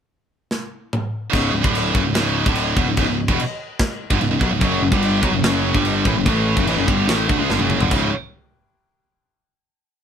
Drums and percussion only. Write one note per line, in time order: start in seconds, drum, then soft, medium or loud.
0.51 snare medium
0.93 mid tom medium
1.33 kick medium
1.33 china medium
1.64 kick loud
1.75 china medium
1.95 kick loud
2.15 snare loud
2.15 china medium
2.46 kick loud
2.55 china medium
2.77 kick loud
2.97 kick loud
2.97 china medium
3.28 kick loud
3.40 china medium
3.79 kick loud
3.79 snare loud
3.79 china medium
4.10 kick loud
4.21 china medium
4.41 kick medium
4.61 kick loud
4.61 china medium
4.92 kick loud
5.02 china medium
5.23 kick loud
5.44 snare loud
5.44 china medium
5.75 kick loud
5.85 china medium
6.05 kick medium
6.26 kick loud
6.26 china medium
6.57 kick loud
6.67 china medium
6.88 kick loud
7.09 snare loud
7.09 china medium
7.29 kick loud
7.50 snare medium
7.60 high tom medium
7.70 mid tom medium
7.81 floor tom medium
7.91 kick loud
7.91 crash medium